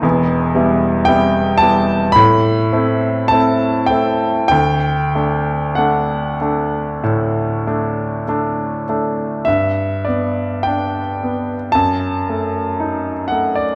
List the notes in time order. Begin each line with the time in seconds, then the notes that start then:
0.02 E1 E2
0.55 G3 B3 E4
1.05 G3 B3 E4 G5
1.58 G3 B3 E4 A5
2.12 A2 B5
2.73 A3 C4 E4
3.28 A3 C4 A5
3.32 E4
3.86 A3 G5
3.91 C4 E4
4.48 D2 G5
5.15 A3 D4
5.75 A3 D4 F#5
6.41 A3 D4
7.03 A2
7.67 A3 D4
8.28 A3 D4
8.89 A3 D4
9.45 G2 E5
10.05 B3 D5
10.63 D4 G5
11.23 B3
11.72 F#2 A5
12.29 A3
12.80 D#4
13.28 A3 F#5
13.56 D5